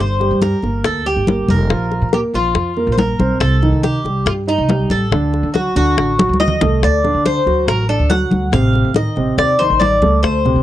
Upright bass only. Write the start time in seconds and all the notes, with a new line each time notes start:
0.00 G1
0.31 G2
0.63 G1
0.84 D2
1.16 G1
1.48 F1
1.70 A#1
2.02 A#2
2.33 A#1
2.55 F2
2.87 A#1
3.19 B1
3.40 C2
3.72 C3
4.04 C2
4.26 G2
4.58 C2
4.90 A1
5.11 D2
5.43 D3
5.76 D2
5.97 A1
6.29 D2
6.61 C2
6.83 D2
7.14 D3
7.46 D2
7.67 A1
7.99 D2
8.31 D2
8.52 A1
8.84 A2
9.16 A1
9.38 D#2
9.70 A1
10.02 C#2
10.23 D2
10.56 D3